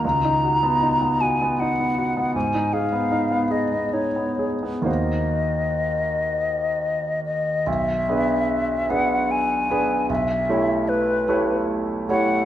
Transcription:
<<
  \new Staff \with { instrumentName = "Flute" } { \time 3/4 \key ees \minor \tempo 4 = 74 bes''4. aes''8 ges''4 | aes''8 f''4 ees''8 des''8 r8 | ees''2~ ees''8 ees''8 | \key b \minor e''4. fis''8 gis''4 |
e''4 b'4 r8 fis''8 | }
  \new Staff \with { instrumentName = "Grand piano" } { \time 3/4 \key ees \minor des,16 ees'16 ges'16 ces'16 ees'16 ces'16 ges'16 ces'16 ees'16 ces'16 ges'16 ces'16 | aes,16 ees'16 aes'16 ces'16 ees'16 ces'16 aes'16 ces'16 ees'16 ces'16 aes'16 ces'16 | <ees, bes ees' ges' c''>2. | \key b \minor b,,8 <b d' gis' b'>4 <b d' gis' b'>4 <b d' gis' b'>8 |
b,,8 <a e' g' cis''>4 <a e' g' cis''>4 <a e' g' cis''>8 | }
>>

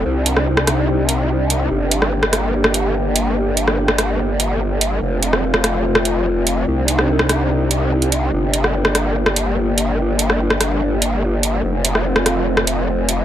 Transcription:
<<
  \new Staff \with { instrumentName = "Analog synth pad" } { \time 4/4 \key g \minor \tempo 4 = 145 << { g'1~ | g'1~ | g'1 | f'1 |
g'1~ | g'1~ | g'1 | f'1 | } \\ { <c c' d' ees'>1 | bes1~ | bes1 | <a c'>1 |
<c d' ees'>1 | <bes d'>1~ | <bes d'>1 | <a c'>1 | } >> }
  \new Staff \with { instrumentName = "Wobble bass" } { \clef bass \time 4/4 \key g \minor c,1 | g,,1~ | g,,1 | f,,1 |
c,1 | g,,1~ | g,,1 | f,,1 | }
  \new DrumStaff \with { instrumentName = "Drums" } \drummode { \time 4/4 r8 hh16 ss16 r16 ss16 <hh ss>8 r8 hh8 r8 hh8 | r8 hh16 ss16 r16 ss16 <hh ss>8 r16 ss16 hh8 r8 hh8 | r8 hh16 ss16 r16 ss16 <hh ss>8 r8 hh8 r8 hh8 | r8 hh16 ss16 r16 ss16 <hh ss>8 r16 ss16 hh8 r8 hh8 |
r8 hh16 ss16 r16 ss16 <hh ss>8 r8 hh8 r16 hh16 hh8 | r8 hh16 ss16 r16 ss16 <hh ss>8 r16 ss16 hh8 r8 hh8 | r8 hh16 ss16 r16 ss16 <hh ss>8 r8 hh8 r8 hh8 | r8 hh16 ss16 r16 ss16 <hh ss>8 r16 ss16 hh8 r8 hh8 | }
>>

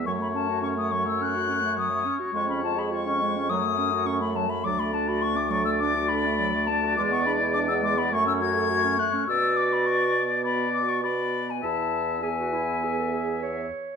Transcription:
<<
  \new Staff \with { instrumentName = "Flute" } { \time 4/4 \key fis \dorian \tempo 4 = 104 cis'''16 b''16 a''8 cis'''16 dis'''16 cis'''16 e'''16 fis'''4 dis'''8. r16 | cis'''16 b''16 a''16 b''16 cis'''4 dis'''4 cis'''16 b''16 a''16 b''16 | \key e \mixolydian d'''16 b''16 a''16 b''16 cis'''16 d'''16 cis'''16 e'''16 d'''8 b''4 a''8 | d'''16 cis'''16 b''8 d'''16 e'''16 d'''16 b''16 cis'''16 e'''16 gis'''4 fis'''8 |
e'''8 d'''16 b''16 cis'''8. r16 b''8 d'''16 cis'''16 b''8. gis''16 | a''4 gis''2 r4 | }
  \new Staff \with { instrumentName = "Oboe" } { \time 4/4 \key fis \dorian cis''1~ | cis''2.~ cis''8 r8 | \key e \mixolydian d''1~ | d''2 cis''2 |
d''2 d''4 d''4 | e''4 e''2~ e''8 r8 | }
  \new Staff \with { instrumentName = "Clarinet" } { \time 4/4 \key fis \dorian fis16 a16 cis'16 fis'16 cis'16 a16 fis16 a16 cis'16 fis'16 cis'16 a16 fis16 a16 cis'16 fis'16 | gis16 cis'16 eis'16 gis'16 eis'16 cis'16 gis16 cis'16 fis16 a16 cis'16 fis'16 cis'16 a16 fis16 a16 | \key e \mixolydian fis16 a16 d'16 fis'16 d'16 a16 fis16 a16 d'16 fis'16 d'16 a16 fis16 a16 d'16 fis'16 | gis16 b16 d'16 e'16 d'16 b16 gis16 b16 a16 cis'16 fis'16 a'16 fis'16 cis'16 a16 cis'16 |
fis'2 fis'4 fis'4 | e'4 gis'16 fis'16 e'8 gis'16 a'16 gis'8 cis''4 | }
  \new Staff \with { instrumentName = "French horn" } { \time 4/4 \key fis \dorian a2.~ a8 r8 | gis2 a2~ | \key e \mixolydian a1 | gis2 a2 |
b2 b4 b4 | b4 b2~ b8 r8 | }
  \new Staff \with { instrumentName = "Bassoon" } { \clef bass \time 4/4 \key fis \dorian fis,2.~ fis,8 r8 | eis,2 fis,2 | \key e \mixolydian d,1 | e,2 fis,2 |
b,1 | e,2.~ e,8 r8 | }
>>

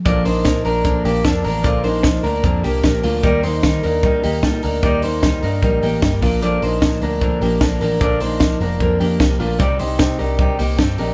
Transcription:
<<
  \new Staff \with { instrumentName = "Clean electric guitar" } { \time 4/4 \key bes \major \tempo 4 = 151 <f' d''>8 <ees' c''>4 <d' bes'>4 <bes g'>8 <d' a'>8 <d' bes'>8 | <f' d''>8 <ees' c''>4 <d' bes'>4 <bes g'>4 <a f'>8 | <g' d''>8 <ees' c''>4 <d' bes'>4 <bes g'>8 <ees' a'>8 <d' bes'>8 | <g' d''>8 <ees' c''>4 <d' bes'>4 <bes g'>4 <bes f'>8 |
<f' d''>8 <ees' c''>4 <d' bes'>4 <bes g'>8 <d' a'>8 <d' bes'>8 | <f' d''>8 <ees' c''>4 <d' bes'>4 <bes g'>4 <a f'>8 | <g' d''>8 <ees' c''>4 <d' bes'>4 <bes g'>8 <c' a'>8 <d' bes'>8 | }
  \new Staff \with { instrumentName = "Steel-string acoustic guitar" } { \time 4/4 \key bes \major <bes, d f bes d' bes'>8 <f bes d' bes'>8 <f bes d' bes'>8 <f bes d' bes'>8 <bes, d f bes d' bes'>8 <f bes d' bes'>8 <f bes d' bes'>8 <f bes d' bes'>8 | <bes, d f bes d' bes'>8 <f bes d' bes'>8 <f bes d' bes'>8 <f bes d' bes'>8 <bes, d f bes d' bes'>8 <f bes d' bes'>8 <f bes d' bes'>8 <f bes d' bes'>8 | <ees g bes ees' bes'>8 <bes ees' bes'>8 <g bes ees' bes'>8 <bes ees' bes'>8 <ees g bes ees' bes'>8 <bes ees' bes'>8 <g bes ees' bes'>8 <bes ees' bes'>8 | <ees g bes ees' bes'>8 <bes ees' bes'>8 <g bes ees' bes'>8 <bes ees' bes'>8 <ees g bes ees' bes'>8 <bes ees' bes'>8 <g bes ees' bes'>8 <f bes d' bes'>8 |
<bes, d f bes d' bes'>8 <f bes d' bes'>8 <f bes d' bes'>8 <f bes d' bes'>8 <bes, d f bes d' bes'>8 <f bes d' bes'>8 <f bes d' bes'>8 <f bes d' bes'>8 | <bes, d f bes d' bes'>8 <f bes d' bes'>8 <f bes d' bes'>8 <f bes d' bes'>8 <bes, d f bes d' bes'>8 <f bes d' bes'>8 <f bes d' bes'>8 <f bes d' bes'>8 | <c g c' ees' g'>8 <c' ees' g'>8 <g c' ees' g'>8 <c' ees' g'>8 <c g c' ees' g'>8 <c' ees' g'>8 <g c' ees' g'>8 <c' ees' g'>8 | }
  \new Staff \with { instrumentName = "Picked electric bass" } { \clef bass \time 4/4 \key bes \major bes,,8 bes,,8 bes,8 bes,,8. r16 bes,,8 f,8 a,,8 | bes,,4. d,8 f,8 c,8 bes,,8 d,8 | ees,8 ees,8 ees8 ees,8. r16 ees,8 bes,8 d,8 | ees,4. g,8 bes,,8 a,,8 g,,8 bes,,8~ |
bes,,8 bes,,8 bes,8 d,8. r16 bes,,8 bes,,8 a,,8 | bes,,4. f,,8 f,8 f,8 c,8 bes,,8 | c,8 c,8 c8 c,8. r16 c,8 g,8 bes,,8 | }
  \new DrumStaff \with { instrumentName = "Drums" } \drummode { \time 4/4 <hh bd>8 hho8 <hh bd sn>8 hho8 <hh bd>8 hho8 <hh bd sn>8 hho8 | <hh bd>8 hho8 <hh bd sn>8 hho8 <hh bd>8 hho8 <hh bd sn>8 hho8 | <hh bd>8 hho8 <hh bd sn>8 hho8 <hh bd>8 hho8 <hh bd sn>8 hho8 | <hh bd>8 hho8 <hh bd sn>8 hho8 <hh bd>8 hho8 <hh bd sn>8 <hho bd>8 |
hh8 hho8 <hh bd sn>8 hho8 <hh bd>8 hho8 <hh bd sn>8 hho8 | <hh bd>8 hho8 <hh bd sn>8 hho8 <hh bd>8 hho8 <hh bd sn>8 hho8 | <hh bd>8 hho8 <hh bd sn>8 hho8 <hh bd>8 hho8 <hh bd sn>8 hho8 | }
>>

